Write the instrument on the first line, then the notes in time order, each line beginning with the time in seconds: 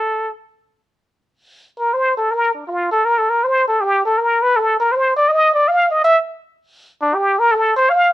muted trumpet
Already playing: A4
1.79 A#4
1.94 C5
2.17 A4
2.31 A#4
2.55 D4
2.67 F4
2.92 A4
3.05 A#4
3.18 A4
3.30 A#4
3.44 C5
3.68 A4
3.81 G4
4.06 A4
4.18 A#4
4.43 B4
4.57 A4
4.80 A#4
4.92 C5
5.17 D5
5.29 D#5
5.54 D5
5.68 F5
5.91 D#5
6.04 E5
7.02 D4
7.15 G4
7.39 A#4
7.52 A4
7.76 C5
7.90 F5